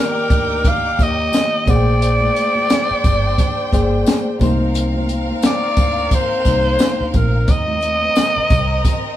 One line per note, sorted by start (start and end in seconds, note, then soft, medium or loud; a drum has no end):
0.00 0.55 D#3 loud
0.00 0.55 A#3 medium
0.00 1.64 D#4 medium
0.00 0.55 G4 loud
0.00 0.70 A#4 loud
0.00 0.55 D5 loud
0.00 1.64 G5 medium
0.00 1.63 D6 medium
0.29 0.91 D2 medium
0.29 kick loud
0.29 closed hi-hat medium
0.29 tambourine soft
0.29 muted conga soft
0.65 1.04 F5 loud
0.65 kick loud
0.65 closed hi-hat loud
0.65 tambourine soft
0.65 muted conga soft
0.65 low conga medium
0.98 1.29 D#2 medium
0.98 1.67 D#3 medium
0.98 1.66 A#3 medium
0.98 1.67 G4 medium
0.98 1.07 C#5 medium
0.98 kick medium
0.98 closed hi-hat medium
0.98 tambourine soft
1.03 1.72 D#5 loud
1.03 1.71 D#5 medium
1.32 snare loud
1.32 closed hi-hat medium
1.32 tambourine medium
1.32 muted conga soft
1.32 high conga medium
1.66 2.28 A#1 medium
1.66 2.94 A#3 medium
1.66 4.36 D4 medium
1.66 2.94 G#4 medium
1.66 4.36 C5 medium
1.66 2.95 C5 medium
1.66 2.95 D5 medium
1.66 1.76 F#5 medium
1.66 4.36 G5 medium
1.66 kick loud
1.66 closed hi-hat medium
1.66 tambourine soft
1.66 muted conga soft
1.66 high conga medium
1.66 low conga medium
1.70 4.42 D5 loud
1.76 2.98 G5 medium
2.02 closed hi-hat medium
2.02 tambourine soft
2.20 high conga medium
2.34 closed hi-hat medium
2.34 muted conga soft
2.55 high conga medium
2.69 snare loud
2.69 closed hi-hat loud
2.69 tambourine medium
2.69 muted conga soft
2.91 muted fingered electric bass stroke soft
3.03 3.34 G1 medium
3.03 kick loud
3.03 closed hi-hat medium
3.03 tambourine medium
3.03 muted conga soft
3.38 kick loud
3.38 closed hi-hat loud
3.38 tambourine soft
3.38 muted conga soft
3.38 low conga medium
3.71 4.03 G1 medium
3.71 4.36 A#3 medium
3.71 4.36 G#4 medium
3.71 4.36 C5 medium
3.71 4.36 D5 medium
3.71 4.37 G5 medium
3.71 kick medium
3.71 snare soft
3.71 closed hi-hat medium
3.71 tambourine soft
3.71 muted conga soft
4.06 snare loud
4.06 closed hi-hat medium
4.06 tambourine medium
4.06 high conga medium
4.40 5.31 C2 loud
4.40 5.67 C3 medium
4.40 5.68 A#3 medium
4.40 7.44 C4 medium
4.40 5.68 D#4 medium
4.40 7.44 A#4 medium
4.40 5.68 C5 loud
4.40 7.44 F5 medium
4.40 kick loud
4.40 closed hi-hat medium
4.40 tambourine soft
4.40 muted conga soft
4.40 high conga medium
4.40 low conga medium
4.74 closed hi-hat loud
4.74 tambourine soft
4.74 muted conga soft
4.94 high conga medium
5.08 closed hi-hat medium
5.08 muted conga soft
5.29 high conga medium
5.42 snare loud
5.42 closed hi-hat loud
5.42 tambourine medium
5.42 muted conga soft
5.46 6.16 D5 loud
5.77 6.08 D2 medium
5.77 kick loud
5.77 closed hi-hat medium
5.77 tambourine medium
6.11 7.10 C5 loud
6.11 kick medium
6.11 closed hi-hat loud
6.11 tambourine soft
6.11 low conga medium
6.45 6.76 C2 medium
6.45 7.48 C3 medium
6.45 7.48 A#3 medium
6.45 7.48 D#4 medium
6.45 7.49 C5 medium
6.45 kick medium
6.45 snare soft
6.45 closed hi-hat medium
6.45 tambourine soft
6.45 muted conga soft
6.79 snare loud
6.79 closed hi-hat medium
6.79 tambourine medium
6.79 muted conga soft
6.79 high conga medium
7.01 7.13 D2 medium
7.10 7.18 C5 medium
7.10 closed hi-hat medium
7.10 tambourine soft
7.10 muted conga soft
7.10 high conga medium
7.10 low conga medium
7.14 7.44 A#1 medium
7.14 7.52 A#4 medium
7.14 kick medium
7.48 8.08 D#2 loud
7.48 9.17 C4 medium
7.48 9.17 A#4 medium
7.48 9.17 D#5 medium
7.48 9.17 D#5 loud
7.48 kick loud
7.48 closed hi-hat medium
7.48 tambourine soft
7.48 muted conga soft
7.68 high conga medium
7.81 closed hi-hat medium
7.81 tambourine soft
7.81 muted conga soft
8.03 high conga medium
8.16 snare loud
8.16 closed hi-hat loud
8.16 tambourine medium
8.16 muted conga soft
8.36 muted fingered electric bass stroke soft
8.36 low conga medium
8.50 8.81 C2 medium
8.50 kick loud
8.50 closed hi-hat medium
8.50 tambourine medium
8.50 muted conga soft
8.85 kick medium
8.85 closed hi-hat loud
8.85 tambourine soft
8.85 muted conga soft
8.85 low conga medium